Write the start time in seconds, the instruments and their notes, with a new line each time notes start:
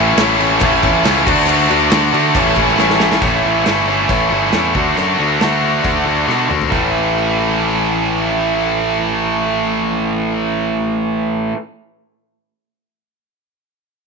Already playing: picked electric bass A1, distorted electric guitar A2 E3 A3 C#4 E4, tonewheel organ E4 A4 C#5 A5, steel-string acoustic guitar A4
0.00 steel-string acoustic guitar A3 C#4 E4
0.07 tambourine
0.17 picked electric bass A1, distorted electric guitar E3, steel-string acoustic guitar A3 C#4 E4, snare, tambourine, crash
0.21 steel-string acoustic guitar A4
0.29 tambourine
0.39 picked electric bass A1, steel-string acoustic guitar A3 C#4 E4 A4, tambourine, crash
0.59 picked electric bass A1, steel-string acoustic guitar A2 E3 A3 C#4 E4 A4, kick, crash
0.82 picked electric bass A1, steel-string acoustic guitar A3 C#4 E4 A4, kick, tambourine, crash
0.92 tambourine
1.04 picked electric bass C#2, distorted electric guitar E3, steel-string acoustic guitar A3 C#4 E4 A4, snare, tambourine, crash
1.25 picked electric bass D2, distorted electric guitar D3 A3, steel-string acoustic guitar D4 F#4 A4, tonewheel organ F#4 A4 D5 A5, kick, crash
1.30 distorted electric guitar D3
1.46 picked electric bass D2, steel-string acoustic guitar D3 A3 D4 F#4 A4, tambourine, crash
1.51 distorted electric guitar D4 F#4
1.57 tambourine
1.68 picked electric bass D2, steel-string acoustic guitar D4 F#4 A4, tambourine, crash
1.73 distorted electric guitar A3
1.79 tambourine
1.90 picked electric bass D2, distorted electric guitar D3, steel-string acoustic guitar A3 D4 F#4, snare, tambourine, crash
2.00 tambourine
2.12 picked electric bass D3, distorted electric guitar D3 A3, steel-string acoustic guitar D4 F#4 A4, tambourine, crash
2.34 picked electric bass A1, steel-string acoustic guitar A2 E3 A3 C#4 E4 A4, tonewheel organ E4 A4 C#5 A5, kick, crash
2.44 tambourine
2.54 picked electric bass A1, steel-string acoustic guitar A4, kick, tambourine, crash
2.59 steel-string acoustic guitar A3 C#4 E4
2.66 snare, tambourine
2.76 picked electric bass A1, distorted electric guitar E3, steel-string acoustic guitar A3 C#4, snare, tambourine
2.80 steel-string acoustic guitar E4 A4
2.90 snare
3.00 steel-string acoustic guitar A3 C#4 E4 A4, snare
3.12 snare, tambourine
3.21 picked electric bass A1, steel-string acoustic guitar A2 E3 A3 C#4 E4 A4, kick, open hi-hat
3.45 picked electric bass A1, steel-string acoustic guitar A3 C#4 E4 A4
3.63 picked electric bass G1, distorted electric guitar A2 E3, steel-string acoustic guitar A3, snare, open hi-hat
3.67 steel-string acoustic guitar C#4 E4 A4
3.87 distorted electric guitar A2 E3, steel-string acoustic guitar A3 C#4 E4 A4
4.09 picked electric bass A1, steel-string acoustic guitar A2 E3 A3 C#4 E4 A4, kick, open hi-hat
4.30 picked electric bass G1, steel-string acoustic guitar A3 C#4 E4 A4
4.51 picked electric bass E2, distorted electric guitar A2 E3, steel-string acoustic guitar A3 C#4 E4 A4, snare, open hi-hat
4.73 picked electric bass D2, distorted electric guitar D3 A3, steel-string acoustic guitar F#4 A4, kick
4.77 distorted electric guitar D3, steel-string acoustic guitar D4
4.97 picked electric bass F#2, steel-string acoustic guitar D3 A3 D4 F#4 A4, open hi-hat
5.19 picked electric bass D2, steel-string acoustic guitar D4 F#4 A4
5.39 picked electric bass D2, distorted electric guitar D3, steel-string acoustic guitar A3 D4 F#4, snare, open hi-hat
5.44 steel-string acoustic guitar A4
5.64 steel-string acoustic guitar D4 F#4 A4
5.84 picked electric bass D2, steel-string acoustic guitar D3 A3 D4 F#4 A4, kick, open hi-hat
6.06 picked electric bass D2, steel-string acoustic guitar D4 F#4 A4
6.26 picked electric bass B2, distorted electric guitar D3, steel-string acoustic guitar A3 D4 F#4, snare
6.31 steel-string acoustic guitar A4
6.49 picked electric bass D2, steel-string acoustic guitar D4 F#4 A4, mid tom
6.61 floor tom
6.71 picked electric bass A1, steel-string acoustic guitar A2 E3 A3 C#4, kick
6.76 steel-string acoustic guitar E4 A4